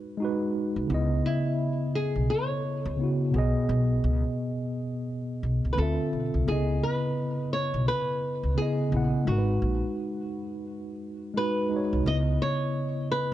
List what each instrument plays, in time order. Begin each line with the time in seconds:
Already playing: tine electric piano G#3 D#4 F#4 B4, nylon-string guitar B4
0.17 tine electric piano G#3 D#4
0.22 tine electric piano F#4 B4
0.76 upright bass C2
0.87 upright bass C#2, tine electric piano C#3 B3
0.92 tine electric piano E4 D#5
1.26 nylon-string guitar E4
1.95 nylon-string guitar G#4
2.16 upright bass B1
2.30 nylon-string guitar C#5
2.85 upright bass C#2
2.97 tine electric piano C#3 B3
3.01 tine electric piano E4 F#4
3.31 upright bass B1, tine electric piano B2 B3
3.36 tine electric piano G#4 D#5
3.69 upright bass B1
4.04 upright bass C#2
5.43 upright bass B1
5.65 upright bass C#2
5.73 tine electric piano D3, nylon-string guitar B4
5.77 upright bass D2, tine electric piano C4 F4, nylon-string guitar A4
5.82 tine electric piano E5
6.13 upright bass B1
6.34 upright bass C2
6.45 upright bass C#2, tine electric piano C#3 B3, nylon-string guitar G#4
6.49 tine electric piano E4 D#5
6.83 nylon-string guitar B4
7.53 nylon-string guitar C#5
7.74 upright bass B1
7.88 nylon-string guitar B4
8.43 upright bass C#2
8.55 tine electric piano C#3 B3, nylon-string guitar G#4
8.60 tine electric piano E4 D#5
8.89 upright bass A#1, tine electric piano C#3 B3
8.94 tine electric piano E4 F#5
9.25 upright bass G#1, tine electric piano G#3 D#4, nylon-string guitar F#4
9.29 tine electric piano F#4 A#4
9.38 tine electric piano B4
9.62 upright bass A#1
11.34 tine electric piano G#3 D#4, nylon-string guitar B4
11.39 tine electric piano F#4 B4
11.69 tine electric piano G#3 D#4
11.74 tine electric piano F#4 C#5
11.93 upright bass C2
12.04 upright bass C#2, tine electric piano C#3 B3, nylon-string guitar D#5
12.09 tine electric piano E4 D#5
12.42 nylon-string guitar C#5
13.12 nylon-string guitar B4